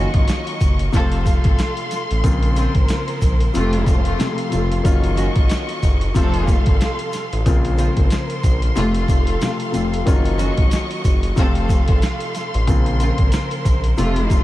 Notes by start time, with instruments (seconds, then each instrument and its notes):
Already playing: string section D#3 F#3 C#4 F#4 D#5 C#6, grand piano D#3 F#3 A#3 C#4 F4
0.14 analog synth bass G#1, kick, closed hi-hat
0.28 snare, closed hi-hat, shaker
0.47 closed hi-hat
0.61 analog synth bass F#1, kick, closed hi-hat, shaker
0.79 closed hi-hat
0.92 analog synth bass F1, grand piano C3 F3 A3 C4 F4, string section A4 F5 C6, kick, closed hi-hat, shaker
0.97 string section F3 C4 A4
1.12 closed hi-hat
1.26 kick, closed hi-hat, shaker
1.44 analog synth bass G#1, kick, closed hi-hat
1.59 snare, closed hi-hat, shaker
1.77 closed hi-hat
1.91 snare, closed hi-hat, shaker
2.11 analog synth bass A1, closed hi-hat
2.24 analog synth bass A#1, grand piano C#3 F3 A#3 C4 F4, string section A#4 C5, kick, closed hi-hat, shaker
2.43 closed hi-hat
2.56 string section C#3 C4 F4, closed hi-hat, shaker
2.75 analog synth bass G#1, kick, closed hi-hat
2.88 snare, closed hi-hat, shaker
3.08 closed hi-hat
3.22 analog synth bass A#1, kick, closed hi-hat, shaker
3.40 closed hi-hat
3.54 analog synth bass F1, grand piano C3 F3 A3 C4 F4, string section C3 A3 F4 A4 F5 C6, closed hi-hat, shaker
3.73 closed hi-hat
3.86 analog synth bass F1, kick, closed hi-hat, shaker
4.05 closed hi-hat
4.19 grand piano C3 F3 A3 C4 F4, snare, closed hi-hat, shaker
4.38 closed hi-hat
4.50 analog synth bass F1, grand piano C3 F3 A3 C4 F4, closed hi-hat, shaker
4.72 closed hi-hat
4.83 analog synth bass F#1, grand piano D#3 F#3 A#3 C#4 F4, string section F#3 D#5 C#6, kick, closed hi-hat, shaker
5.04 closed hi-hat
5.16 string section D#3 C#4 F#4, closed hi-hat, shaker
5.36 analog synth bass G#1, kick, closed hi-hat
5.49 snare, closed hi-hat, shaker
5.69 closed hi-hat
5.83 analog synth bass F#1, kick, closed hi-hat, shaker
6.01 closed hi-hat
6.14 analog synth bass F1, grand piano C3 F3 A3 C4 F4, string section F3 C4 A4 F5 C6, kick, closed hi-hat, shaker
6.34 closed hi-hat
6.47 kick, closed hi-hat, shaker
6.66 analog synth bass G#1, kick, closed hi-hat
6.81 snare, closed hi-hat, shaker
6.99 closed hi-hat
7.13 snare, closed hi-hat, shaker
7.32 analog synth bass A1, closed hi-hat
7.45 analog synth bass A#1, grand piano C#3 F3 A#3 C4 F4, string section A#4 C5 C6, kick, closed hi-hat, shaker
7.65 closed hi-hat
7.78 string section C#3 C4 F4, closed hi-hat, shaker
7.97 analog synth bass G#1, kick, closed hi-hat
8.10 snare, closed hi-hat, shaker
8.30 closed hi-hat
8.44 analog synth bass A#1, kick, closed hi-hat, shaker
8.62 closed hi-hat
8.76 analog synth bass F1, grand piano C3 F3 A3 C4 F4, string section C3 A3 F4 A4 F5, closed hi-hat, shaker
8.94 closed hi-hat
9.08 analog synth bass F1, kick, closed hi-hat, shaker
9.27 closed hi-hat
9.41 grand piano C3 F3 A3 C4 F4, snare, closed hi-hat, shaker
9.60 closed hi-hat
9.72 analog synth bass F1, grand piano C3 F3 A3 C4 F4, closed hi-hat, shaker
9.94 closed hi-hat
10.05 analog synth bass F#1, grand piano D#3 F#3 A#3 C#4 F4, string section F#3 D#5 C#6, kick, closed hi-hat, shaker
10.25 closed hi-hat
10.38 string section D#3 C#4 F#4, closed hi-hat, shaker
10.57 analog synth bass G#1, kick, closed hi-hat
10.71 snare, closed hi-hat, shaker
10.91 closed hi-hat
11.04 analog synth bass F#1, kick, closed hi-hat, shaker
11.23 closed hi-hat
11.36 analog synth bass F1, grand piano C3 F3 A3 C4 F4, string section C4 A4 F5 C6, kick, closed hi-hat, shaker
11.40 string section F3 A4
11.55 closed hi-hat
11.69 kick, closed hi-hat, shaker
11.88 analog synth bass G#1, kick, closed hi-hat
12.02 snare, closed hi-hat, shaker
12.20 closed hi-hat
12.35 snare, closed hi-hat, shaker
12.54 analog synth bass A1, closed hi-hat
12.67 analog synth bass A#1, grand piano C#3 F3 A#3 C4 F4, string section A#4 C5, kick, closed hi-hat, shaker
12.86 closed hi-hat
13.00 string section C#3 C4 F4, closed hi-hat, shaker
13.18 analog synth bass G#1, kick, closed hi-hat
13.32 snare, closed hi-hat, shaker
13.51 closed hi-hat
13.65 analog synth bass A#1, kick, closed hi-hat, shaker
13.84 closed hi-hat
13.97 analog synth bass F1, grand piano C3 F3 A3 C4 F4, string section C3 A3 F4 A4 F5 C6, closed hi-hat, shaker
14.16 closed hi-hat
14.30 analog synth bass F1, kick, closed hi-hat, shaker